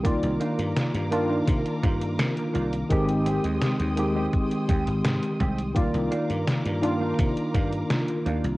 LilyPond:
<<
  \new Staff \with { instrumentName = "String section" } { \time 4/4 \key c \minor \tempo 4 = 84 <bes' f'' bes'' d'''>1 | <aes g'' c''' ees'''>1 | <bes' f'' bes'' d'''>1 | }
  \new Staff \with { instrumentName = "Clean electric guitar" } { \time 4/4 \key c \minor r8 <bes d' ees' f'>16 r4 <bes d' ees' f'>16 r8 <bes d' ees' f'>16 r8. <bes d' ees' f'>16 r16 | r8 <aes c' ees' g'>16 r4 <aes c' ees' g'>16 r8 <aes c' ees' g'>16 r8. <aes c' ees' g'>16 r16 | r8 <bes d' ees' f'>16 r4 <bes d' ees' f'>16 r8 <bes d' ees' f'>16 r8. <bes d' ees' f'>16 r16 | }
  \new Staff \with { instrumentName = "Tine electric piano" } { \time 4/4 \key c \minor <ees bes f' d''>4. <ees bes d' f'>16 r2 r16 | <ees aes c' g'>4. <ees aes c' g'>2~ <ees aes c' g'>8 | <ees bes f' d''>4. <ees bes d' f'>16 r2 r16 | }
  \new Staff \with { instrumentName = "Slap bass" } { \clef bass \time 4/4 \key c \minor c,16 c,16 r16 g,16 r16 g,8. c16 r16 g,8 c16 r16 c,8 | aes,,8. ees,16 r16 ees,8. r8 ees,16 aes,,16 aes,16 r16 c,8~ | c,16 c,16 r16 g,16 r16 g,8. c16 r16 g,8 r8 ees,16 c,16 | }
  \new DrumStaff \with { instrumentName = "Drums" } \drummode { \time 4/4 <hh bd>16 hh16 hh16 hh16 <hh sn>16 hh16 hh8 <hh bd>16 hh16 <hh bd>16 hh16 <hh sn>16 hh16 hh16 hh16 | <hh bd>16 hh16 hh16 hh16 <hh sn>16 hh16 hh8 <hh bd>16 hh16 <hh bd>16 hh16 <hh sn>16 hh16 <hh bd>16 hh16 | <hh bd>16 hh16 hh16 hh16 <hh sn>16 hh16 hh8 <hh bd>16 hh16 <hh bd>16 hh16 <hh sn>16 hh16 hh16 hh16 | }
>>